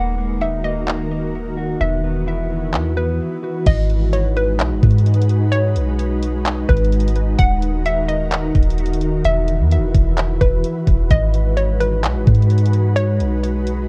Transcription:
Already playing: D#1 D#3 A#3 D#4 F#4 A#4 F#5
0.18 A#3
0.41 D#4 E5
0.64 A#3 D#5
0.88 A#3, clap
1.11 A#3
1.57 F#4
1.80 E1 E3 B3 E4 B4 E5
2.04 B3
2.27 E4
2.50 B3
2.74 E2 B3, clap
2.97 B3 B4
3.43 F#4
3.67 G#1 G#3 D#4 F#4 B4 D#5, kick, closed hi-hat, crash
3.90 closed hi-hat
4.13 C#5, closed hi-hat
4.37 B4, closed hi-hat
4.59 B1, clap, closed hi-hat
4.71 G#1
4.83 G#2, kick, closed hi-hat
4.91 closed hi-hat
4.98 closed hi-hat
5.06 closed hi-hat
5.14 closed hi-hat
5.22 closed hi-hat
5.29 closed hi-hat
5.52 C#5, closed hi-hat
5.76 B1, closed hi-hat
5.99 closed hi-hat
6.23 closed hi-hat
6.46 clap, closed hi-hat
6.69 G#1 B4, kick, closed hi-hat
6.77 closed hi-hat
6.84 closed hi-hat
6.92 closed hi-hat
7.00 closed hi-hat
7.08 closed hi-hat
7.15 closed hi-hat
7.38 D#1 D#3 F#4 A#4 F#5, kick, closed hi-hat
7.62 closed hi-hat
7.85 E5, closed hi-hat
8.08 D#5, closed hi-hat
8.32 clap, closed hi-hat
8.55 D#1, kick, closed hi-hat
8.63 closed hi-hat
8.70 closed hi-hat
8.78 closed hi-hat
8.86 closed hi-hat
8.94 closed hi-hat
9.01 closed hi-hat
9.25 E1 E3 E4 F#4 B4 E5, closed hi-hat
9.48 closed hi-hat
9.60 E2
9.71 closed hi-hat
9.77 E1
9.95 E1, kick, closed hi-hat
10.18 clap, closed hi-hat
10.41 E1 B4, kick, closed hi-hat
10.64 closed hi-hat
10.87 E1, kick, closed hi-hat
11.11 G#1 G#3 D#4 D#5, kick, closed hi-hat
11.34 closed hi-hat
11.57 C#5, closed hi-hat
11.81 B4, closed hi-hat
12.04 B1, clap, closed hi-hat
12.15 G#1
12.27 G#2, kick, closed hi-hat
12.35 closed hi-hat
12.42 closed hi-hat
12.50 closed hi-hat
12.58 closed hi-hat
12.66 closed hi-hat
12.74 closed hi-hat
12.96 C#5, closed hi-hat
13.20 B1, closed hi-hat
13.44 closed hi-hat
13.67 closed hi-hat

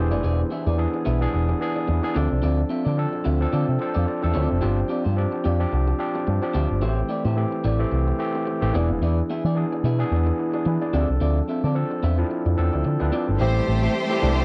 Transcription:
Already playing: E1 E3 B3 D4 G4 G#4 C5
0.11 F1 B3 E4 G#4 D5
0.23 E1 B3 E4 G#4 D5
0.51 B3 E4 G#4 E5
0.66 E2 B3 E4 G#4 D5
0.78 E3 B3 D4 G#4
0.94 muted clean electric guitar stroke
1.05 B1 B3 E4 G#4 E5
1.20 E3 B3 D4 G#4, muted clean electric guitar stroke
1.33 E1, muted clean electric guitar stroke
1.49 muted clean electric guitar stroke
1.60 E3 B3 D4 G#4
1.76 muted clean electric guitar stroke
1.88 E2, muted clean electric guitar stroke
2.03 E3 B3 D4 G#4, muted clean electric guitar stroke
2.15 D2 F3 C4 D4 F4 A4 D5
2.30 C2, muted clean electric guitar stroke
2.42 D2 C4 F4 A4 D5
2.69 C4 F4 A4 E5
2.85 D3 C4 F4 A4 D5
2.97 F3 C4 D4 A4
3.13 muted clean electric guitar stroke
3.24 D2 C4 F4 A4 E5
3.40 F3 C4 D4 A4, muted clean electric guitar stroke
3.52 D3 C4 F4 A4 D5
3.68 C3, muted clean electric guitar stroke
3.79 F3 C4 D4 A4 C5, muted clean electric guitar stroke
3.94 F2 C4 F4 A4 D5
4.07 D5, muted clean electric guitar stroke
4.22 E2 F3 C4 D4 A4, muted clean electric guitar stroke
4.34 D2 C4 F4 A4 D5 E5
4.49 F1, muted clean electric guitar stroke
4.61 G1 F3 C4 D4 F4 G4 C5
4.88 C4 F4 G4 D5
5.04 G2 C4 F4 G4 C5
5.16 F3 C4 D4 G4
5.32 muted clean electric guitar stroke
5.44 F2 C4 F4 G4 D5
5.59 F3 C4 D4 G4, muted clean electric guitar stroke
5.72 C2, muted clean electric guitar stroke
5.88 muted clean electric guitar stroke
5.99 F3 C4 D4 G4
6.15 muted clean electric guitar stroke
6.27 G2, muted clean electric guitar stroke
6.42 F3 C4 D4 G4, muted clean electric guitar stroke
6.54 D2 C4 F4 G4 C5
6.70 G1, muted clean electric guitar stroke
6.81 A1 E3 A3 C4 E4 F#4 G4 C5
6.89 G4
7.09 A3 E4 G4 D5
7.25 A2 A3 E4 G4 C5
7.36 E3 A3 C4 G4
7.52 muted clean electric guitar stroke
7.64 A1 A3 E4 G4 D5
7.79 E3 A3 C4 G4, muted clean electric guitar stroke
7.92 C2, muted clean electric guitar stroke
8.07 muted clean electric guitar stroke
8.18 E3 A3 C4 G4
8.35 muted clean electric guitar stroke
8.46 G5, muted clean electric guitar stroke
8.61 A1 E3 A3 C4 G4, muted clean electric guitar stroke
8.73 E1 E3 B3 D4 E4 G#4 B4 D5
8.90 F1, muted clean electric guitar stroke
9.02 E2 B3 E4 G#4 D5
9.30 B3 E4 G#4 E5
9.45 E3 B3 E4 G#4 D5
9.55 E3 B3 D4 G#4
9.73 muted clean electric guitar stroke
9.84 B2 B3 E4 G#4 E5
9.99 E3 B3 D4 G#4, muted clean electric guitar stroke
10.11 E2, muted clean electric guitar stroke
10.27 muted clean electric guitar stroke
10.39 B3 E4
10.54 D4 G#4, muted clean electric guitar stroke
10.65 E3 E4 B4, muted clean electric guitar stroke
10.82 G#4 D5, muted clean electric guitar stroke
10.93 D2 F3 C4 D4 F4 G4 A4 D5
11.00 A4
11.09 C2, muted clean electric guitar stroke
11.21 D2 C4 F4 A4 D5
11.48 C4 F4 A4 E5
11.64 D3 C4 F4 A4 D5
11.75 F3 C4 D4 A4
11.91 muted clean electric guitar stroke
12.03 E2 C4 F4 A4 E5
12.18 F3 C4 D4 E4, muted clean electric guitar stroke
12.31 muted clean electric guitar stroke
12.46 F2, muted clean electric guitar stroke
12.57 E2 F3 C4 D4 A4
12.73 D2, muted clean electric guitar stroke
12.85 D3, muted clean electric guitar stroke
12.99 D2 F3 C4 D4 B4, muted clean electric guitar stroke
13.12 C4 F4 A4 D5
13.28 G1, muted clean electric guitar stroke
13.39 A1 E3 G3 A3 C4 E4 G4 C5 E5 A5 C6
13.67 A1, muted clean electric guitar stroke
13.82 A3 E4 G4 C5
13.94 muted clean electric guitar stroke
14.09 E3 G3 A3 C4 G4, muted clean electric guitar stroke
14.21 C2 E3 G3 A3 C4 D4 E4 G4 D5
14.37 muted clean electric guitar stroke

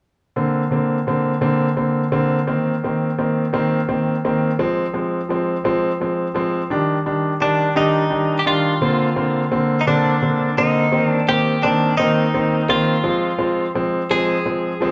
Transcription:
0.36 D3 A#3 C4
0.71 D3 A#3 C4
1.07 D3 A#3 C4
1.41 D3 A#3 C4
1.76 D3 A#3 C4
2.12 D3 A#3 C4
2.47 D#3 A#3 C4
2.84 D#3 A#3 C4
3.18 D#3 A#3 C4
3.53 D#3 A#3 C4
3.89 D#3 A#3 C4
4.25 D#3 A#3 C4
4.59 F3 G#3 C4
4.93 F3 G#3 C4
5.29 F3 G#3 C4
5.64 F3 G#3 C4
6.00 F3 G#3 C4
6.34 F3 G#3 C4
6.70 D#3 G3 D4
7.06 D#3 G3 D4
7.40 D#3 G3 D4
7.75 D#3 G3 D4 D#4
8.10 D#3 G3 D4
8.39 G4
8.46 D#3 G3 D4 F4
8.81 D3 A#3 C4
9.16 D3 A#3 C4
9.51 D3 A#3 C4
9.81 D#4
9.87 D3 A#3 C4 D4
10.22 D3 A#3 C4
10.57 D3 A#3 C4 D#4
10.92 D#3 A#3 C4
11.08 D4
11.28 D#3 A#3 C4 G4
11.63 D#3 A#3 C4 D4
11.97 D#3 A#3 C4 D#4
12.34 D#3 A#3 C4
12.69 D#3 A#3 C4 F4
13.04 F3 G#3 C4
13.38 F3 G#3 C4
13.75 F3 G#3 C4
14.10 F3 G#3 C4 G#4
14.46 F3 G#3 C4
14.80 F3 G#3 C4

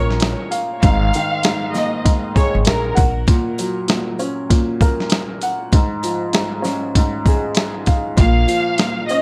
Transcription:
Already playing: A#1 A#2 F3 C#4 A#4
0.10 snare
0.20 snare, closed hi-hat, sleigh bells
0.51 F5, closed hi-hat, shaker, sleigh bells
0.82 G#1 G#2 F5, kick, closed hi-hat, sleigh bells
1.13 D#3, closed hi-hat, shaker, sleigh bells
1.43 G#2, snare, closed hi-hat, sleigh bells
1.73 A#3 D#5, snare, shaker, sleigh bells
2.05 G#2, kick, closed hi-hat, sleigh bells
2.36 G#4 C#5, kick, shaker, sleigh bells
2.55 G#1
2.65 A#1 A#4, snare, closed hi-hat, sleigh bells
2.95 A#1 F#5, kick, closed hi-hat, shaker, sleigh bells
3.27 A#2, kick, closed hi-hat, sleigh bells
3.58 F#3, closed hi-hat, shaker, sleigh bells
3.88 A#2, snare, closed hi-hat, sleigh bells
4.19 C#4, shaker, sleigh bells
4.50 A#2, kick, closed hi-hat, sleigh bells
4.81 A#4, kick, shaker, sleigh bells
5.00 snare
5.10 snare, closed hi-hat, sleigh bells
5.42 F#5, closed hi-hat, shaker, sleigh bells
5.72 G#2, kick, closed hi-hat, sleigh bells
6.03 F3, closed hi-hat, shaker, sleigh bells
6.33 G#2, snare, closed hi-hat, sleigh bells
6.62 C#4, snare, shaker, sleigh bells
6.95 G#2, kick, closed hi-hat, sleigh bells
7.26 G#4, kick, shaker, sleigh bells
7.55 snare, closed hi-hat, sleigh bells
7.86 F5, kick, closed hi-hat, shaker, sleigh bells
8.17 A#1 A#2 F5, kick, closed hi-hat, sleigh bells
8.47 F3, closed hi-hat, shaker, sleigh bells
8.78 A#2, snare, closed hi-hat, sleigh bells
9.08 C#4 D#5, shaker, sleigh bells

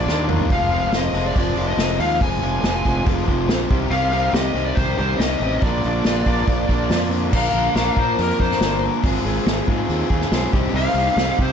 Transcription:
Already playing: D5
0.06 D#2 A#2 D3 A#3 D4 F4, snare
0.28 A#2 D3 A#3 D4 F4, mid tom
0.39 floor tom
0.50 F1 F2 C3 F3 G#3 C4 F4 F5, kick, open hi-hat
0.71 F2 C3 F3 G#3 C4 F4 F5, open hi-hat
0.92 F1 F2 C3 F3 G#3 C4 F4 D#5, snare, open hi-hat
1.13 F1 F2 C3 F3 G#3 C4 F4, open hi-hat
1.27 D5
1.35 F1 F2 C3 F3 G#3 C4 F4 D5, kick, open hi-hat
1.56 F1 F2 C3 F3 G#3 C4 F4, open hi-hat
1.68 D#5
1.77 F1 F2 C3 F3 G#3 C4 F4, snare, open hi-hat
1.99 D#2 F2 C3 F3 G#3 C4 F4 F5, open hi-hat
2.21 F1 F2 C3 F3 G#3 C4 F4 G#5, kick, open hi-hat
2.41 F1 F2 C3 F3 G#3 C4 F4, open hi-hat
2.62 F1 F2 C3 F3 G#3 C4 F4, snare, open hi-hat
2.84 F1 F2 C3 F3 G#3 C4 F4, kick, open hi-hat
3.05 F1 F2 C3 F3 G#3 C4 F4, kick, open hi-hat
3.27 F1 F2 C3 F3 G#3 C4 F4, kick, open hi-hat
3.48 A#1 F2 C3 F3 G#3 C4 F4, snare, open hi-hat
3.69 C2 C3 D#3 G3 C4 G4, kick, open hi-hat
3.90 C2 C3 D#3 G3 C4 G4 F5, open hi-hat
4.11 C3 D#3 G3 C4 G4 F5, open hi-hat
4.32 C2 C3 D#3 G3 C4 G4 D#5, snare, open hi-hat
4.54 C2 C3 D#3 G3 C4 G4, open hi-hat
4.66 D5
4.75 C2 C3 D#3 G3 C4 G4 C5, kick, open hi-hat
4.98 C2 C3 D#3 G3 C4 G4 C5, open hi-hat
5.18 C2 C3 D#3 G3 C4 G4 D#5, snare, open hi-hat
5.40 A1 C3 D#3 G3 C4 G4, open hi-hat
5.62 A#1 A#2 D3 A#3 D4 F4 D5, kick, open hi-hat
5.84 A#1 A#2 D3 A#3 D4 F4, open hi-hat
6.04 A#1 A#2 D3 A#3 D4 F4, snare, open hi-hat
6.25 A#1 A#2 D3 A#3 D4 F4, kick, open hi-hat
6.47 A#1 A#2 D3 A#3 D4 F4, kick, open hi-hat
6.68 A#1 A#2 D3 A#3 D4 F4, kick, open hi-hat
6.89 F2 A#2 D3 A#3 D4 F4, snare, open hi-hat
7.10 A#2 D3 A#3 D4 F4, open hi-hat
7.31 A#1 A#2 D3 F3 A#3 D4 A#4, kick, crash
7.36 F5
7.52 A#1 F3 A#3 D4 A#4
7.74 A#1 F3 A#3 D4 A#4, snare, open hi-hat
7.95 A#2 F3 A#3 D4 A#4, kick
7.99 C5
8.18 F2 A#4, open hi-hat
8.39 F2 F3 A#3 D4 A#4 C5, kick
8.51 snare
8.60 G1 A#2 D3 F3 A#3 D4 A#4, snare, open hi-hat
9.03 G#1 G#3 C4 F4 G#4, kick, open hi-hat
9.25 G#1 C4 F4 G#4
9.46 G#1 G#3 C4 F4 G#4, snare, open hi-hat
9.68 G#2 C4 F4 G#4, kick
9.89 D#2, open hi-hat
10.09 D#2 C4 F4 G#4, kick
10.21 snare
10.31 B1 G#3 C4 F4 G#4, snare, open hi-hat
10.53 C2 C3 G3 C4 D#4 G4, kick
10.73 C2 C3 G3 C4 D#4 G4 F5, open hi-hat
10.94 C2 D#4 G4
10.99 C4
11.16 C2 G3 C4 D#4 G4, snare, open hi-hat
11.38 C3 C4 D#4 G4, kick
11.43 C5

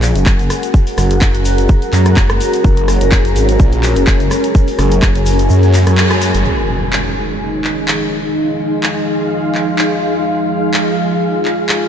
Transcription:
Already playing: A#1 C#4 F#4 G#4 A#4 F#5 A#5
0.02 clap, open hi-hat, shaker
0.15 F#1, closed hi-hat, shaker
0.26 kick, clap, shaker
0.39 closed hi-hat, shaker
0.50 cross-stick, open hi-hat, shaker
0.63 closed hi-hat, shaker
0.74 kick, shaker
0.87 open hi-hat, shaker
0.98 F#1, cross-stick, open hi-hat, shaker
1.10 closed hi-hat, shaker
1.21 kick, clap, shaker
1.34 F#1, closed hi-hat, shaker
1.45 open hi-hat, shaker
1.58 closed hi-hat, shaker
1.69 kick, shaker
1.82 closed hi-hat, shaker
1.93 F#2, clap, open hi-hat, shaker
2.05 cross-stick, closed hi-hat, shaker
2.17 F#1, kick, clap, shaker
2.29 cross-stick, closed hi-hat, shaker
2.41 open hi-hat, shaker
2.53 closed hi-hat, shaker
2.64 F#1, kick, shaker
2.77 closed hi-hat, shaker
2.88 cross-stick, open hi-hat, shaker
3.01 F#1, closed hi-hat, shaker
3.12 kick, clap, shaker
3.25 closed hi-hat, shaker
3.36 G#1 G#5, open hi-hat, shaker
3.49 closed hi-hat, shaker
3.60 A#1, kick, shaker
3.72 closed hi-hat, shaker
3.83 clap, open hi-hat, shaker
3.96 F#1, closed hi-hat, shaker
4.07 kick, clap, shaker
4.20 closed hi-hat, shaker
4.31 cross-stick, open hi-hat, shaker
4.44 closed hi-hat, shaker
4.55 kick, shaker
4.67 open hi-hat, shaker
4.79 F#1, cross-stick, open hi-hat, shaker
4.92 closed hi-hat, shaker
5.02 kick, clap, shaker
5.15 F#1, closed hi-hat, shaker
5.26 open hi-hat, shaker
5.39 closed hi-hat, shaker
5.50 F#2, shaker
5.63 closed hi-hat, shaker
5.74 clap, open hi-hat, shaker
5.87 F#2, cross-stick, closed hi-hat, shaker
5.98 clap, shaker
6.11 cross-stick, closed hi-hat, shaker
6.22 open hi-hat, shaker
6.35 F#1, closed hi-hat, shaker
6.45 F3 D#4 G#4, impact
6.57 G#4
6.93 clap
7.14 F5
7.20 C6
7.64 clap
7.88 clap
8.83 clap
9.55 clap
9.79 clap
10.26 F4
10.74 clap
11.45 clap
11.69 clap

